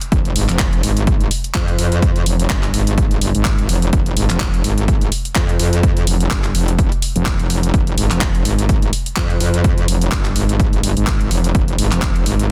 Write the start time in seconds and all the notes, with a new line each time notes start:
0.01 closed hi-hat
0.12 F1, kick, closed hi-hat
0.25 closed hi-hat
0.36 G#1, open hi-hat
0.49 F1, clap, closed hi-hat
0.59 kick, clap, closed hi-hat
0.73 closed hi-hat
0.83 G#1, open hi-hat
0.97 closed hi-hat
1.07 kick, closed hi-hat
1.20 closed hi-hat
1.31 open hi-hat
1.44 closed hi-hat
1.54 F2, kick, clap, closed hi-hat
1.68 closed hi-hat
1.79 F2, open hi-hat
1.92 closed hi-hat
2.02 kick, closed hi-hat
2.16 closed hi-hat
2.26 F1, open hi-hat
2.40 closed hi-hat
2.50 G1, kick, clap, closed hi-hat
2.63 clap, closed hi-hat
2.74 G#1, open hi-hat
2.87 closed hi-hat
2.98 kick, closed hi-hat
3.11 closed hi-hat
3.21 G1, open hi-hat
3.35 G#1, closed hi-hat
3.45 kick, clap, closed hi-hat
3.59 closed hi-hat
3.69 F1, open hi-hat
3.82 closed hi-hat
3.93 F1, kick, closed hi-hat
4.06 closed hi-hat
4.17 G#1, open hi-hat
4.30 F1, clap, closed hi-hat
4.40 kick, clap, closed hi-hat
4.54 closed hi-hat
4.64 G#1, open hi-hat
4.78 closed hi-hat
4.88 kick, closed hi-hat
5.01 closed hi-hat
5.12 open hi-hat
5.25 closed hi-hat
5.35 F2, kick, clap, closed hi-hat
5.49 closed hi-hat
5.59 F2, open hi-hat
5.73 closed hi-hat
5.83 kick, closed hi-hat
5.97 closed hi-hat
6.07 F1, open hi-hat
6.20 closed hi-hat
6.31 G1, kick, clap, closed hi-hat
6.44 clap, closed hi-hat
6.55 F1, open hi-hat
6.68 closed hi-hat
6.79 kick, closed hi-hat
6.92 closed hi-hat
7.02 open hi-hat
7.16 F1, closed hi-hat
7.26 kick, clap, closed hi-hat
7.39 F1, closed hi-hat
7.50 open hi-hat
7.63 closed hi-hat
7.74 F1, kick, closed hi-hat
7.87 closed hi-hat
7.98 G#1, open hi-hat
8.10 F1, clap, closed hi-hat
8.21 kick, clap, closed hi-hat
8.35 closed hi-hat
8.45 G#1, open hi-hat
8.59 closed hi-hat
8.69 kick, closed hi-hat
8.82 closed hi-hat
8.93 open hi-hat
9.06 closed hi-hat
9.16 F2, kick, clap, closed hi-hat
9.30 closed hi-hat
9.40 F2, open hi-hat
9.54 closed hi-hat
9.64 kick, closed hi-hat
9.78 closed hi-hat
9.88 F1, open hi-hat
10.02 closed hi-hat
10.12 G1, kick, clap, closed hi-hat
10.25 clap, closed hi-hat
10.36 G#1, open hi-hat
10.49 closed hi-hat
10.60 kick, closed hi-hat
10.73 closed hi-hat
10.83 G1, open hi-hat
10.97 G#1, closed hi-hat
11.07 kick, clap, closed hi-hat
11.21 closed hi-hat
11.31 F1, open hi-hat
11.44 closed hi-hat
11.55 F1, kick, closed hi-hat
11.68 closed hi-hat
11.78 G#1, open hi-hat
11.91 F1, clap, closed hi-hat
12.02 kick, clap, closed hi-hat
12.16 closed hi-hat
12.26 G#1, open hi-hat
12.39 closed hi-hat